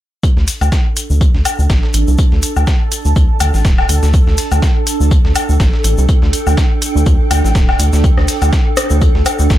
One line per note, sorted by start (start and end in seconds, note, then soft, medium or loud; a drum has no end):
0.23 9.58 D4 medium
0.23 9.58 A4 medium
0.23 kick loud
0.23 tambourine medium
0.23 shaker soft
0.37 0.45 D2 medium
0.37 snare soft
0.48 closed hi-hat medium
0.48 open hi-hat medium
0.48 shaker medium
0.52 9.58 A4 medium
0.61 0.69 D2 loud
0.61 closed hi-hat soft
0.61 low woodblock medium
0.61 shaker soft
0.72 kick loud
0.72 snare loud
0.72 tambourine medium
0.72 shaker soft
0.96 closed hi-hat medium
0.96 tambourine medium
0.96 shaker medium
1.10 1.28 D2 medium
1.10 shaker soft
1.17 5.10 A5 medium
1.17 kick loud
1.17 tambourine medium
1.21 shaker soft
1.34 1.43 D2 medium
1.34 snare soft
1.45 closed hi-hat medium
1.45 tambourine medium
1.45 low woodblock medium
1.45 shaker medium
1.59 1.67 D2 medium
1.59 shaker medium
1.70 1.80 A1 medium
1.70 kick loud
1.70 snare loud
1.70 tambourine medium
1.70 shaker soft
1.83 snare soft
1.94 2.04 A1 medium
1.94 closed hi-hat medium
1.94 tambourine medium
1.94 shaker medium
2.07 2.16 C2 loud
2.07 shaker soft
2.18 kick loud
2.18 tambourine medium
2.18 shaker soft
2.32 2.40 D2 medium
2.32 snare soft
2.42 closed hi-hat medium
2.42 tambourine medium
2.42 shaker loud
2.56 2.65 D2 loud
2.56 low woodblock medium
2.56 shaker soft
2.67 kick loud
2.67 snare loud
2.67 tambourine medium
2.67 shaker soft
2.91 closed hi-hat medium
2.91 tambourine medium
2.91 shaker medium
3.05 3.13 D2 medium
3.05 shaker soft
3.16 3.26 D2 medium
3.16 kick loud
3.16 tambourine medium
3.16 shaker soft
3.40 3.51 D2 medium
3.40 closed hi-hat medium
3.40 tambourine medium
3.40 low woodblock medium
3.40 shaker medium
3.54 3.62 A1 medium
3.54 snare soft
3.54 shaker medium
3.65 3.84 D1 medium
3.65 kick loud
3.65 snare loud
3.65 tambourine medium
3.65 shaker soft
3.78 snare medium
3.78 low woodblock medium
3.89 3.99 D2 medium
3.89 closed hi-hat medium
3.89 tambourine medium
3.89 shaker medium
4.03 4.20 D2 medium
4.03 snare medium
4.03 shaker soft
4.14 kick loud
4.14 tambourine medium
4.14 shaker soft
4.27 4.35 D2 loud
4.27 snare soft
4.37 closed hi-hat medium
4.37 open hi-hat medium
4.37 shaker medium
4.51 4.60 D2 medium
4.51 closed hi-hat soft
4.51 low woodblock medium
4.51 shaker medium
4.62 kick loud
4.62 snare loud
4.62 tambourine medium
4.62 shaker soft
4.87 closed hi-hat medium
4.87 tambourine medium
4.87 shaker medium
5.00 5.18 D2 medium
5.00 shaker soft
5.08 9.00 G5 medium
5.08 kick loud
5.08 tambourine medium
5.08 shaker soft
5.25 5.33 D2 medium
5.25 snare soft
5.35 closed hi-hat medium
5.35 tambourine medium
5.35 low woodblock medium
5.35 shaker medium
5.49 5.57 D2 medium
5.49 shaker soft
5.60 5.70 A1 loud
5.60 kick loud
5.60 snare loud
5.60 tambourine medium
5.60 shaker soft
5.73 snare soft
5.84 5.95 A1 medium
5.84 closed hi-hat medium
5.84 tambourine medium
5.84 shaker medium
5.98 6.06 C2 loud
5.98 shaker soft
6.09 kick loud
6.09 tambourine medium
6.09 shaker soft
6.22 6.30 D2 loud
6.22 snare soft
6.33 closed hi-hat medium
6.33 tambourine medium
6.33 shaker medium
6.47 6.55 D2 loud
6.47 low woodblock medium
6.47 shaker soft
6.57 kick loud
6.57 snare loud
6.57 tambourine medium
6.57 shaker soft
6.82 closed hi-hat medium
6.82 tambourine medium
6.82 shaker medium
6.96 7.04 D2 medium
6.96 shaker medium
7.06 7.17 D2 loud
7.06 kick loud
7.06 tambourine medium
7.06 shaker soft
7.31 7.41 D2 medium
7.31 closed hi-hat medium
7.31 tambourine medium
7.31 low woodblock medium
7.31 shaker medium
7.44 7.52 A1 loud
7.44 snare soft
7.44 shaker medium
7.55 7.74 D1 medium
7.55 kick loud
7.55 snare loud
7.55 tambourine medium
7.55 shaker soft
7.69 snare medium
7.69 low woodblock medium
7.79 7.90 D2 medium
7.79 closed hi-hat medium
7.79 tambourine medium
7.79 shaker medium
7.93 8.11 D2 medium
7.93 snare medium
7.93 shaker medium
8.04 kick loud
8.04 tambourine medium
8.04 shaker soft
8.17 8.26 D2 medium
8.17 cross-stick soft
8.17 snare soft
8.28 closed hi-hat medium
8.28 open hi-hat medium
8.28 shaker medium
8.42 8.50 D2 loud
8.42 closed hi-hat soft
8.42 low woodblock medium
8.42 shaker medium
8.52 kick loud
8.52 snare loud
8.52 tambourine medium
8.52 shaker soft
8.77 cross-stick medium
8.77 closed hi-hat medium
8.77 tambourine medium
8.77 shaker medium
8.90 9.08 D2 medium
8.90 shaker medium
8.98 9.58 A5 medium
8.98 kick loud
8.98 tambourine medium
8.98 shaker soft
9.15 9.23 D2 medium
9.15 snare soft
9.26 cross-stick soft
9.26 closed hi-hat medium
9.26 tambourine medium
9.26 low woodblock medium
9.26 shaker medium
9.39 9.48 D2 medium
9.39 shaker medium
9.50 9.58 A1 medium
9.50 kick loud
9.50 snare loud
9.50 tambourine medium
9.50 shaker soft